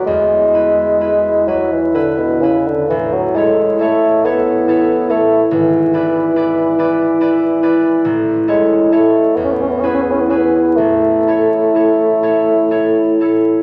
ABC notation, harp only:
X:1
M:6/8
L:1/8
Q:3/8=43
K:A
V:1 name="Harp"
[E,,B] [EB] [EB] [EB] [EB] [EB] | A,,, [EAc] [EAc] [EAc] [EAc] [EAc] | G,,, [EBd] [EBd] [EBd] [EBd] [EBd] | A,,, [EAc] [EAc] E,, [EGB] [EGB] |
A,,, [EAc] [EAc] [EAc] [EAc] [EAc] |]